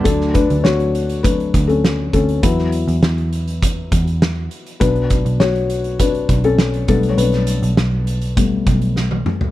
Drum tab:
HH |x-xx-xxxxxxx--xx|x-xx-xxxx-xx--xx|xxxx-xxxxxxx-xxx|xxxx--xxx-xx----|
SD |-o--o-------o---|-o--o-------o---|----o-------o---|-o--o-------o---|
T1 |----------------|----------------|----------------|-------------o--|
T2 |----------------|----------------|----------------|--------------o-|
FT |----------------|----------------|----------------|---------------o|
BD |o-o-----o-o---o-|o-------o-o-----|o-o-----o-o---o-|--------o-o-----|